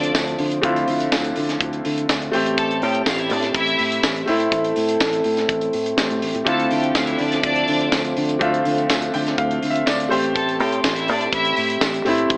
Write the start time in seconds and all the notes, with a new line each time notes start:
Already playing: D3 F3 A3 C4 D4 E4 F4 D5
0.03 closed hi-hat
0.15 D2, kick, snare, clap, tambourine
0.27 closed hi-hat
0.39 D3, open hi-hat
0.52 closed hi-hat
0.62 D2 D3 A3 C4 E4 F4, kick, closed hi-hat
0.76 closed hi-hat
0.88 D3, open hi-hat
1.00 closed hi-hat
1.12 D2, kick, snare, clap, tambourine
1.24 closed hi-hat
1.36 D3, open hi-hat
1.49 snare, closed hi-hat
1.61 D2, kick, closed hi-hat
1.73 closed hi-hat
1.85 D3, open hi-hat
1.98 closed hi-hat
2.09 D2, kick, snare, clap, tambourine
2.22 closed hi-hat
2.31 A1 A3 C4 G4, open hi-hat
2.46 closed hi-hat
2.58 A4 A5, kick, closed hi-hat
2.71 closed hi-hat
2.82 A2 G4 G5, open hi-hat
2.95 closed hi-hat
3.06 A1 F4 F5, kick, snare, clap, tambourine
3.18 E4 E5, closed hi-hat
3.30 A2 D4 D5, open hi-hat
3.43 snare, closed hi-hat
3.54 A1 E4 E5, kick, closed hi-hat
3.67 closed hi-hat
3.79 A2, open hi-hat
3.92 closed hi-hat
4.03 A1, kick, snare, clap, tambourine
4.16 closed hi-hat
4.26 A2 A3 C4 E4 A4, open hi-hat
4.40 closed hi-hat
4.52 A1, kick, closed hi-hat
4.64 closed hi-hat
4.76 A2, open hi-hat
4.89 closed hi-hat
5.00 A1, kick, snare, clap, tambourine
5.13 closed hi-hat
5.24 A2, open hi-hat
5.37 snare, closed hi-hat
5.49 A1, kick, closed hi-hat
5.61 closed hi-hat
5.73 A2, open hi-hat
5.86 closed hi-hat
5.97 A1 A3 C4 G4, kick, snare, clap, tambourine
6.11 A2, closed hi-hat
6.22 A1, open hi-hat
6.35 A2, closed hi-hat
6.45 D2 D3 F3 A3 C4 E4 F4 A4 A5, kick, closed hi-hat
6.60 closed hi-hat
6.71 D3 G4 G5, open hi-hat
6.84 closed hi-hat
6.95 D2 F4 F5, kick, snare, clap, tambourine
7.06 E4 E5, closed hi-hat
7.19 D3 D4 D5, open hi-hat
7.32 snare, closed hi-hat
7.43 D2 D4 D5, kick, closed hi-hat
7.56 closed hi-hat
7.68 D3, open hi-hat
7.81 closed hi-hat
7.92 D2, kick, snare, clap, tambourine
8.05 closed hi-hat
8.17 D3, open hi-hat
8.29 closed hi-hat
8.39 D2 D3 A3 C4 F4 E5, kick, closed hi-hat
8.54 closed hi-hat
8.65 D3, open hi-hat
8.78 closed hi-hat
8.89 D2, kick, snare, clap, tambourine
9.02 closed hi-hat
9.14 D3 G5, open hi-hat
9.27 snare, closed hi-hat
9.38 D2 F5, kick, closed hi-hat
9.51 closed hi-hat
9.63 D3, open hi-hat
9.70 E5
9.76 closed hi-hat
9.86 D2 D5, kick, snare, clap, tambourine
10.00 closed hi-hat
10.09 A1 A3 C4 G4 C5, open hi-hat
10.24 closed hi-hat
10.35 A4 A5, kick, closed hi-hat
10.49 closed hi-hat
10.59 A2 G4 G5, open hi-hat
10.72 closed hi-hat
10.84 A1 F4 F5, kick, snare, clap, tambourine
10.96 E4 E5, closed hi-hat
11.08 A2 D4 D5, open hi-hat
11.21 closed hi-hat
11.33 A1 E4 E5, kick, closed hi-hat
11.45 closed hi-hat
11.57 A2, open hi-hat
11.70 closed hi-hat
11.81 A1, kick, snare, clap, tambourine
11.94 closed hi-hat
12.05 A2 A3 C4 E4, open hi-hat
12.18 closed hi-hat
12.30 A1, kick, closed hi-hat